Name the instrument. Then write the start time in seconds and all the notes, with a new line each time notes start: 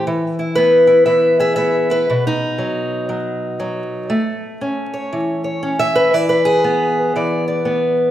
steel-string acoustic guitar
0.07 E3
0.39 E4
0.55 B3 B4
0.87 E4
1.06 E3 E5
1.39 G#4 E5
1.56 B3 E5
1.90 E4 B4
2.10 B2
2.27 D#4
2.58 F#3
3.09 F#3
3.60 F#3
4.10 A3
4.61 C#4
4.94 C#5
5.13 E3
5.44 C#5
5.63 C#4
5.79 E5
5.96 B4
6.14 E3 D5
6.29 B4
6.45 G#4
6.64 B3
7.16 E3 D5
7.48 D5
7.65 B3